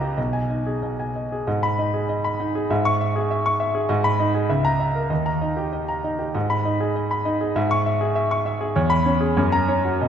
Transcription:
Already playing: C#2 D#5 A#5
0.01 G4
0.17 B1 D#5
0.33 G#5
0.50 D#4 D#5
0.66 G#4
0.83 B2 D#5
1.00 G#5
1.16 D#5
1.32 G#4
1.47 G#2 D#5
1.63 B5
1.79 D#4 D#5
1.94 G#4
2.09 D#5
2.24 B5
2.40 D#4 D#5
2.55 G#4
2.70 G#2 E5
2.85 C#6
3.01 E5
3.16 G#4
3.31 E5
3.46 C#6
3.60 E5
3.75 G#4
3.89 G#2 D#5
4.04 B5
4.20 D#4 D#5
4.35 G#4
4.50 C#2 E5
4.65 A#5
4.80 E5
4.95 A#4
5.10 D#2 D#5
5.26 A#5
5.41 D#4 D#5
5.57 G4
5.73 D#5
5.88 A#5
6.04 D#4 D#5
6.19 G4
6.34 G#2 D#5
6.50 B5
6.65 D#4 D#5
6.80 G#4
6.96 D#5
7.11 B5
7.25 D#4 D#5
7.41 G#4
7.56 G#2 E5
7.71 C#6
7.86 E5
8.01 G#4
8.15 E5
8.31 C#6
8.46 E5
8.61 G#4
8.76 E2 C#5
8.90 B5
9.06 C#4 C#5
9.21 G#4
9.37 F#2 C#5
9.52 A#5
9.68 C#4 C#5
9.85 F#4
10.01 B2 D#5

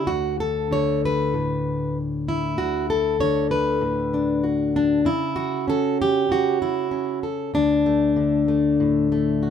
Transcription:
Already playing: D3
0.07 D2 F#4
0.40 A4
0.71 D3 C#5
1.05 B4
1.34 A2
2.28 E4
2.58 D2 F#4
2.90 A4
3.20 D3 C#5
3.51 B4
3.81 A2
4.14 D4
4.44 F#4
4.76 D4
5.05 C#3 E4
5.36 F#4
5.68 C#4 A4
6.02 G4
6.29 C#3 F#4
6.62 E4
6.91 C#4
7.23 A4
7.54 D2 D4
7.86 A3
8.16 D3
8.48 A3
8.80 A2
9.12 A3
9.43 F#4

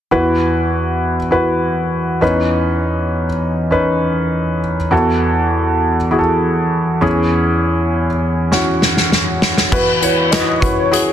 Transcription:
0.11 E2 E3 E4 F#4 B4
1.31 E4 F#4 B4
2.21 E2 E3 C#4 D#4 B4
3.71 C#4 D#4 B4
4.91 E2 E3 E4 F#4 A4
6.11 E4 F#4 G#4
6.19 A4
7.01 E2 E3 C#4 E4 G#4
8.52 C#4 E4 F#4, snare
8.82 snare
8.97 snare
9.12 snare
9.42 snare
9.58 snare
9.72 E3 E4 F#4 B4, kick, crash
10.01 E4 F#4 B4 C#5, closed hi-hat
10.31 E4 F#4 B4 D#5, snare, clap, closed hi-hat
10.60 E4 F#4 B4 C#5, kick, closed hi-hat
10.91 E4 F#4 G#4, closed hi-hat

